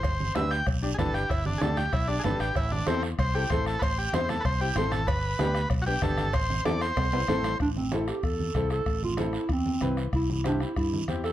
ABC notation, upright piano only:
X:1
M:4/4
L:1/8
Q:1/4=190
K:Am
V:1 name="Upright piano"
z2 [DGB] z2 [DGd] [DGB] z | z2 [DGd] z2 [DGd] [DGB] z | z2 [CEA] z2 [CEA] [CEA] z | z2 [CEc] z2 [CEG] [CEA] z |
z2 [B,DG] z2 [B,DG] [B,DG] z | z2 [CEA] z2 [CEB] [CEA] z | z2 [CEA] z3 [CEA] z | z2 [CEA] z3 [CEB] z |
z2 [CEG] z3 [CEG] z |]